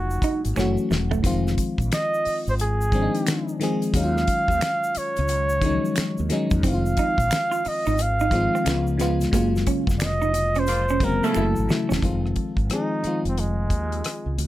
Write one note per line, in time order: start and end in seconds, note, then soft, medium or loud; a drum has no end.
0.00 0.20 F1 medium
0.00 0.58 C#3 medium
0.00 0.56 F#3 medium
0.00 0.58 G#3 medium
0.00 0.58 A#3 medium
0.00 0.22 D#4 medium
0.00 0.58 F4 medium
0.00 0.47 F#4 medium
0.00 0.58 F#4 medium
0.11 shaker soft
0.22 0.41 D#4 medium
0.22 kick medium
0.22 closed hi-hat medium
0.22 shaker medium
0.45 0.56 G#1 medium
0.45 closed hi-hat soft
0.45 shaker soft
0.56 0.76 F#1 medium
0.56 1.16 E3 medium
0.56 1.17 F#3 medium
0.56 1.17 A3 medium
0.56 0.75 C#4 medium
0.56 1.18 C#4 medium
0.56 finger snap medium
0.56 snare medium
0.56 shaker medium
0.60 1.18 F#4 medium
0.77 shaker soft
0.91 1.20 E1 medium
0.91 muted clean electric guitar stroke soft
0.91 snare medium
0.91 shaker soft
1.11 1.21 A3 medium
1.11 floor tom medium
1.11 shaker medium
1.23 1.54 F1 loud
1.23 2.42 D#3 medium
1.23 2.43 F3 medium
1.23 2.43 G#3 medium
1.23 2.44 C4 medium
1.23 2.44 F4 medium
1.23 kick loud
1.23 closed hi-hat loud
1.23 shaker medium
1.47 snare soft
1.47 shaker soft
1.58 kick medium
1.58 closed hi-hat medium
1.58 shaker soft
1.78 1.90 A#1 medium
1.78 kick medium
1.78 closed hi-hat soft
1.78 shaker medium
1.92 2.44 D#5 loud
1.92 finger snap medium
1.92 finger snap loud
1.92 snare loud
1.92 closed hi-hat medium
1.92 shaker medium
2.14 shaker soft
2.25 muted fretless electric bass stroke soft
2.25 open hi-hat soft
2.25 shaker medium
2.47 3.07 G#1 medium
2.47 2.54 C5 medium
2.47 shaker soft
2.59 3.57 G#4 medium
2.59 closed hi-hat medium
2.59 shaker medium
2.81 shaker medium
2.92 3.52 D#3 medium
2.92 3.53 F3 medium
2.92 3.53 G#3 medium
2.92 3.54 C4 medium
2.92 3.02 D4 medium
2.92 kick medium
2.92 closed hi-hat medium
3.02 3.58 D#4 medium
3.15 closed hi-hat soft
3.15 shaker soft
3.27 finger snap medium
3.27 snare loud
3.27 closed hi-hat medium
3.27 shaker medium
3.28 finger snap medium
3.48 shaker soft
3.60 3.90 D#3 medium
3.60 3.90 F3 medium
3.60 3.91 G#3 medium
3.60 3.91 C4 medium
3.60 3.92 G#4 medium
3.60 snare soft
3.60 closed hi-hat medium
3.60 shaker soft
3.82 closed hi-hat soft
3.82 shaker medium
3.94 4.24 D#2 medium
3.94 5.12 D#3 medium
3.94 5.13 F#3 medium
3.94 5.14 G#3 medium
3.94 5.14 C#4 medium
3.94 4.99 F5 loud
3.94 kick loud
3.94 closed hi-hat loud
3.94 shaker medium
3.98 4.04 D#4 medium
4.04 5.18 F4 medium
4.17 snare soft
4.17 shaker soft
4.28 kick medium
4.28 closed hi-hat medium
4.28 shaker medium
4.48 4.60 D#2 medium
4.48 kick medium
4.48 closed hi-hat soft
4.48 shaker medium
4.61 finger snap medium
4.61 snare loud
4.61 closed hi-hat loud
4.61 shaker medium
4.84 shaker medium
4.95 6.31 C#5 loud
4.95 muted fretless electric bass stroke soft
4.95 closed hi-hat medium
4.95 shaker medium
5.16 5.77 C#2 medium
5.16 closed hi-hat soft
5.16 shaker soft
5.28 closed hi-hat medium
5.28 shaker medium
5.49 shaker medium
5.61 6.22 D#3 medium
5.61 5.71 F3 medium
5.61 6.23 G#3 medium
5.61 6.23 C#4 medium
5.61 kick medium
5.61 closed hi-hat medium
5.65 6.26 F#3 medium
5.65 6.24 D#4 medium
5.85 shaker soft
5.96 finger snap medium
5.96 muted fretless electric bass stroke soft
5.96 snare loud
5.96 closed hi-hat medium
5.96 shaker medium
5.98 finger snap medium
6.18 6.29 D#2 medium
6.18 shaker soft
6.29 6.59 D#3 medium
6.29 6.60 F#3 medium
6.29 6.60 G#3 medium
6.29 6.61 C#4 medium
6.29 6.61 D#4 medium
6.29 snare soft
6.29 closed hi-hat medium
6.29 shaker soft
6.50 6.62 E2 medium
6.50 kick loud
6.50 closed hi-hat soft
6.50 shaker medium
6.63 6.93 F1 loud
6.63 7.82 D#3 medium
6.63 7.83 F3 medium
6.63 7.83 G#3 medium
6.63 6.81 C4 medium
6.63 7.84 C4 medium
6.63 6.73 E4 medium
6.63 kick loud
6.63 closed hi-hat loud
6.63 shaker medium
6.69 7.70 F5 loud
6.74 7.87 F4 medium
6.86 shaker soft
6.97 7.16 D#4 medium
6.97 kick medium
6.97 closed hi-hat medium
6.97 shaker medium
7.18 7.29 A#1 medium
7.18 kick medium
7.18 closed hi-hat soft
7.18 shaker medium
7.31 finger snap medium
7.31 snare loud
7.31 closed hi-hat loud
7.31 shaker medium
7.33 finger snap medium
7.51 7.62 F4 medium
7.51 shaker medium
7.65 8.04 D#5 medium
7.65 muted fretless electric bass stroke soft
7.65 muted clean electric guitar stroke soft
7.65 open hi-hat soft
7.65 shaker medium
7.86 8.46 G#1 medium
7.86 7.96 D#4 medium
7.86 shaker soft
7.98 closed hi-hat medium
7.98 shaker medium
8.02 9.01 F5 medium
8.20 8.30 D#4 medium
8.20 shaker medium
8.31 8.65 D#3 medium
8.31 8.64 F3 medium
8.31 8.65 G#3 medium
8.31 8.67 C4 medium
8.31 8.67 F4 medium
8.31 muted clean electric guitar stroke soft
8.31 kick medium
8.31 closed hi-hat medium
8.55 8.64 C4 medium
8.55 shaker soft
8.64 9.26 C#2 loud
8.64 8.95 C#3 medium
8.64 8.95 F3 medium
8.64 8.96 G#3 medium
8.64 8.96 B3 medium
8.64 finger snap medium
8.64 snare loud
8.64 closed hi-hat medium
8.64 shaker medium
8.68 8.97 F4 medium
8.68 finger snap medium
8.87 shaker soft
8.97 9.28 C#3 medium
8.97 9.29 F3 medium
8.97 9.29 G#3 medium
8.97 9.30 B3 medium
8.97 9.18 B3 medium
8.97 snare soft
8.97 closed hi-hat medium
8.97 shaker soft
9.02 9.30 F4 loud
9.21 snare soft
9.21 closed hi-hat soft
9.21 shaker medium
9.31 9.63 F#1 loud
9.31 10.51 C#3 medium
9.31 10.52 F#3 medium
9.31 10.52 G#3 medium
9.31 9.51 A#3 medium
9.31 10.53 A#3 medium
9.31 10.53 F4 loud
9.31 kick loud
9.31 closed hi-hat loud
9.31 shaker medium
9.56 snare soft
9.56 shaker soft
9.67 9.85 C#4 medium
9.67 kick medium
9.67 closed hi-hat medium
9.67 shaker medium
9.87 11.19 F1 medium
9.87 kick medium
9.87 snare soft
9.87 shaker medium
9.99 10.06 D5 medium
9.99 finger snap medium
9.99 snare loud
9.99 closed hi-hat loud
9.99 shaker medium
10.02 10.61 D#5 loud
10.02 finger snap medium
10.22 10.32 D#4 medium
10.22 shaker soft
10.34 muted clean electric guitar stroke soft
10.34 closed hi-hat medium
10.34 shaker medium
10.55 10.66 C#4 medium
10.55 closed hi-hat soft
10.55 shaker soft
10.59 11.06 C5 medium
10.67 10.84 C#3 medium
10.67 10.84 A#3 medium
10.67 10.84 F4 medium
10.67 closed hi-hat medium
10.67 shaker medium
10.89 11.00 C#4 medium
10.89 shaker medium
11.00 11.32 C#3 medium
11.00 11.34 F#3 medium
11.00 11.35 G#3 medium
11.00 11.36 A#3 medium
11.00 11.36 C4 medium
11.00 kick medium
11.00 closed hi-hat medium
11.04 11.26 A#4 medium
11.04 muted clean electric guitar stroke soft
11.23 11.45 C#3 medium
11.23 11.45 A3 medium
11.23 11.34 A#3 medium
11.23 11.45 E4 medium
11.23 11.70 A4 medium
11.23 shaker soft
11.33 11.55 F#1 medium
11.33 11.64 C#3 medium
11.33 11.65 E3 medium
11.33 11.65 F#3 medium
11.33 11.66 A3 medium
11.33 11.53 A#3 medium
11.33 11.66 E4 medium
11.33 finger snap medium
11.33 shaker medium
11.56 11.68 G#1 medium
11.56 shaker soft
11.68 11.98 C#3 medium
11.68 11.99 E3 medium
11.68 11.99 F#3 medium
11.68 12.00 A3 medium
11.68 12.00 E4 medium
11.68 muted clean electric guitar stroke soft
11.68 snare medium
11.68 shaker soft
11.89 12.02 E1 medium
11.89 12.00 C#4 medium
11.89 snare medium
11.89 shaker medium
12.01 12.33 F1 medium
12.01 12.62 D#3 medium
12.01 12.62 F3 medium
12.01 12.63 G#3 medium
12.01 12.63 C4 medium
12.01 12.64 F4 medium
12.01 kick medium
12.01 closed hi-hat medium
12.26 cross-stick soft
12.36 kick medium
12.36 closed hi-hat medium
12.57 12.69 G#1 medium
12.57 kick medium
12.57 closed hi-hat soft
12.69 13.00 D#3 medium
12.69 13.00 F3 medium
12.69 13.01 G#3 medium
12.69 13.01 C4 medium
12.69 13.23 D#4 medium
12.69 13.02 G#4 medium
12.69 cross-stick medium
12.69 closed hi-hat medium
13.03 14.22 D#3 medium
13.03 14.23 F3 soft
13.03 14.23 G#3 medium
13.03 14.24 C4 soft
13.03 muted fretless electric bass stroke soft
13.03 closed hi-hat soft
13.07 14.24 F4 medium
13.25 13.72 F1 medium
13.25 13.41 C4 medium
13.25 closed hi-hat soft
13.38 14.40 G#3 medium
13.38 closed hi-hat medium
13.70 14.01 D#2 medium
13.70 kick medium
13.70 closed hi-hat medium
13.92 closed hi-hat soft
14.04 cross-stick medium
14.04 closed hi-hat medium
14.26 14.37 C#2 medium
14.38 14.47 D2 medium
14.38 closed hi-hat medium